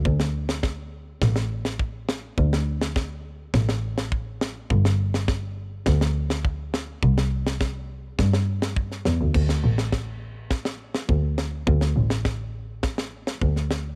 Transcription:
<<
  \new Staff \with { instrumentName = "Double bass" } { \clef bass \time 4/4 \key c \lydian \tempo 4 = 103 d,2 a,,2 | d,2 a,,2 | g,,2 d,2 | c,2 g,4. e,16 d,16 |
d,8 a,,2~ a,,8 d,4 | d,8 a,,2~ a,,8 d,4 | }
  \new DrumStaff \with { instrumentName = "Drums" } \drummode { \time 4/4 bd16 sn8 sn16 <bd sn>4 <bd sn>16 sn8 sn16 bd8 sn8 | bd16 sn8 sn16 <bd sn>4 <bd sn>16 sn8 sn16 bd8 sn8 | bd16 sn8 sn16 <bd sn>4 <bd sn>16 sn8 sn16 bd8 sn8 | bd16 sn8 sn16 <bd sn>4 <bd sn>16 sn8 sn16 bd16 sn16 sn8 |
<cymc bd>16 sn8 sn16 <bd sn>4 <bd sn>16 sn8 sn16 bd8 sn8 | bd16 sn8 sn16 <bd sn>4 <bd sn>16 sn8 sn16 bd16 sn16 sn8 | }
>>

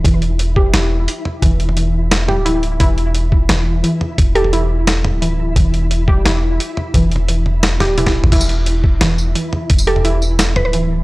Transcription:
<<
  \new Staff \with { instrumentName = "Synth pluck" } { \time 4/4 \key e \minor \tempo 4 = 174 r1 | r1 | r1 | r8 a'8 r2. |
r1 | r1 | r1 | r8 a'8 r4. b'16 b'16 r4 | }
  \new Staff \with { instrumentName = "Synth pluck" } { \time 4/4 \key e \minor e8 r4 g'8 e'2 | e4 e8 r4 g'8 e'4 | e'2 e4 e8 r8 | r8 g'8 e'2 e4 |
e8 r4 g'8 e'2 | e4 e8 r4 g'8 e'4 | e'2 e4 e8 r8 | r8 g'8 e'2 e4 | }
  \new Staff \with { instrumentName = "Synth texture" } { \time 4/4 \key e \minor e'1~ | e'1~ | e'1~ | e'1~ |
e'1~ | e'1 | e'1~ | e'1 | }
  \new Staff \with { instrumentName = "808-style bass" } { \clef bass \time 4/4 \key e \minor e,,2 e,,4 r4 | e,,2~ e,,8 d,,4. | e,,2 e,,4 r4 | e,,2~ e,,8 d,,4. |
e,,2 e,,4 r4 | e,,2~ e,,8 d,,4~ d,,16 g,,16 | e,,2 e,,4 r4 | e,,2~ e,,8 d,,4. | }
  \new DrumStaff \with { instrumentName = "Drums" } \drummode { \time 4/4 <hh bd>8 hh8 hh8 bd8 <hh sn>4 hh8 toml8 | <hh bd>8 hh16 toml16 hh4 <hh sn>8 toml8 hh8 hh8 | <hh bd>8 hh8 hh8 bd8 <hh sn>4 hh8 toml8 | <hh bd>8 hh16 toml16 hh4 <hh sn>8 toml8 hh4 |
<hh bd>8 hh8 hh8 bd8 <hh sn>4 hh8 toml8 | <hh bd>8 hh32 toml16. hh8 toml8 <hh sn>8 <hh sn toml>8 <hh tommh>16 <bd sn>8 toml16 | <cymc hh bd>16 tamb16 hh8 hh8 bd8 <hh sn>8 tamb8 hh8 toml8 | <hh bd>16 tamb16 hh16 toml16 hh8 tamb8 <hh sn tamb>8 toml8 hh4 | }
>>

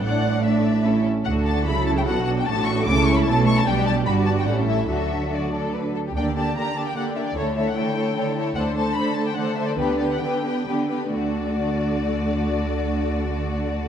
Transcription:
<<
  \new Staff \with { instrumentName = "Violin section" } { \time 3/4 \key d \major \tempo 4 = 146 fis''4 e''4. r8 | fis''8 a''8 b''8 a''16 g''16 fis''8 fis''16 g''16 | a''8 cis'''8 d'''8 cis'''16 b''16 a''8 cis'''16 a''16 | g''8 a''8 b''8 a''16 g''16 fis''8 e''8 |
e''4 d''4 r4 | g''8 a''8 bes''8 a''16 g''16 fis''8 e''16 d''16 | cis''8 e''16 fis''16 g''4. r8 | fis''8 a''8 b''8 a''16 g''16 fis''8 e''16 d''16 |
b'8 d''16 fis''16 g''4. r8 | d''2.~ | d''2. | }
  \new Staff \with { instrumentName = "Violin section" } { \time 3/4 \key d \major << { d''4 d''4 a'8 r8 | a'2. | a'4 a'4 a'4 | d''4 d''4 a'4 |
a'4 fis'8 a'8 b'8 a'16 g'16 | d''8 d''8 d''8 d''8 d''8 d''8 | cis''8 cis''8 cis''8 cis''8 cis''8 cis''8 | c''8 c''8 c''8 c''8 c''8 c''8 |
b'8 b'8 b'8 b'8 b'8 b'8 | d''2.~ | d''2. | } \\ { d'4 d'4 e'8 r8 | fis'4 e'4 fis'4 | fis'4 e'4 cis'4 | g'4 fis'4 e'4 |
fis'4 r2 | g'8 g'8 g'8 g'8 g'8 g'8 | a'8 a'8 a'8 a'8 a'8 a'8 | a'8 a'8 a'8 a'8 a'8 a'8 |
g'8 g'8 g'8 g'8 g'8 g'8 | fis'2.~ | fis'2. | } >> }
  \new Staff \with { instrumentName = "Viola section" } { \time 3/4 \key d \major << { d'4 d'4 cis'8 r8 | d'4 e'4 d'4~ | d'4 cis'4 e'4 | d'4 d'4 cis'4 |
d'4 d'4. r8 | d'8 d'8 d'8 d'8 d'8 d'8 | e'8 e'8 e'8 e'8 e'8 e'8 | d'8 d'8 d'8 d'8 d'8 d'8 |
d'8 d'8 d'8 d'8 d'8 d'8 | d'2.~ | d'2. | } \\ { a4 a4 a8 r8 | a4 fis2 | a2 a4 | g4 g4 g4 |
fis4 fis4. r8 | bes8 bes8 bes8 bes8 bes8 bes8 | a8 a8 a8 a8 a8 a8 | a8 a8 a8 a8 a8 a8 |
b8 b8 b8 b8 b8 b8 | a2.~ | a2. | } >> }
  \new Staff \with { instrumentName = "Cello section" } { \clef bass \time 3/4 \key d \major a,2~ a,8 r8 | d4 cis4 b,4 | a,4 cis4 b,4 | b,4 g,4 a,4 |
d2~ d8 r8 | d4 d4 d4 | d4 d4 d4 | d4 d4 d4 |
d4 d4 d4 | d2.~ | d2. | }
  \new Staff \with { instrumentName = "Double bass section" } { \clef bass \time 3/4 \key d \major a,,2~ a,,8 r8 | d,4 cis,4 b,,4 | a,,4 cis,4 b,,4 | b,,4 g,,4 a,,4 |
d,2~ d,8 r8 | d,4 r2 | d,4 r2 | d,4 r2 |
d,4 r2 | d,2.~ | d,2. | }
>>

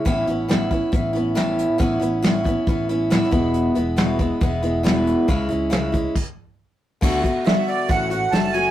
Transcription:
<<
  \new Staff \with { instrumentName = "Accordion" } { \time 4/4 \key a \lydian \tempo 4 = 138 r1 | r1 | r1 | r1 |
r4 e''8 d''8 fis''8 fis''8 a''8 gis''8 | }
  \new Staff \with { instrumentName = "Steel-string acoustic guitar" } { \time 4/4 \key a \lydian <a, e b cis' e'>8 <b cis' e'>8 <a, e b cis' e'>8 <b cis' e'>8 <e b cis' e'>8 <b cis' e'>8 <a, e b cis' e'>4 | <a, e b cis' e'>8 <b cis' e'>8 <a, e b cis' e'>8 <b cis' e'>8 <e b cis' e'>8 <b cis' e'>8 <a, e b cis' e'>8 <e, b, e gis b e'>8~ | <e, b, e gis b e'>8 <e gis b e'>8 <e, b, e gis b e'>8 <e gis b e'>8 <e gis b e'>8 <e gis b e'>8 <e, b, e gis b e'>4 | <cis e gis cis' e'>8 <gis cis' e'>8 <cis e gis cis' e'>8 <gis cis' e'>8 r2 |
<d a b fis'>8 <a b fis'>8 <d a b fis'>4 <a, e a cis' fis'>8 <a cis' fis'>8 <e a cis' fis'>8 <a cis' fis'>8 | }
  \new Staff \with { instrumentName = "Fingered electric bass" } { \clef bass \time 4/4 \key a \lydian a,,8 a,,4. a,,2 | a,,8 a,,4. a,,4. e,,8~ | e,,8 e,,4. e,,2 | cis,8 cis,4. r2 |
d,8 r4. a,,4 fis,,4 | }
  \new DrumStaff \with { instrumentName = "Drums" } \drummode { \time 4/4 <hh bd>8 hh8 <hh sn>8 <hh bd>8 <hh bd>8 hh8 <hh sn>8 hh8 | <hh bd>8 hh8 <hh sn>8 <hh bd>8 <hh bd>8 hh8 <hh sn>16 sn16 <hh bd>8 | hh8 hh8 <hh sn>8 <hh bd>8 <hh bd>8 hh8 <hh sn>8 hh8 | <hh bd>8 hh8 <hh sn>8 <hh bd>8 <cymc bd>4 r4 |
<cymc bd>8 <hh bd>8 <hh sn>8 hh8 <hh bd>8 hh8 <hh sn>8 hh8 | }
>>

